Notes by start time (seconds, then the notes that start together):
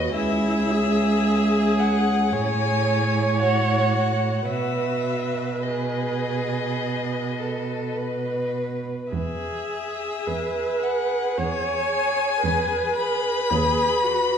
Already playing: D#2 F#4 B4 D#5
0.15 C#2 E4 G#4 E5
0.71 G#4
1.79 F#5
2.33 A2 C#5 G#5
3.39 F#4 F#5
4.49 B2 F#4 B4 E5
5.63 G#4 D#5
7.38 A4
7.98 B4
9.12 E2 G#4 E5
9.68 G#4
10.27 E2 B4
10.81 G#4 F#5
11.37 E2 C#5 G#5
11.89 G#4
12.43 E2 B4
12.95 G#4 B5
13.50 D#2 G#4 B4
14.03 F#4 B4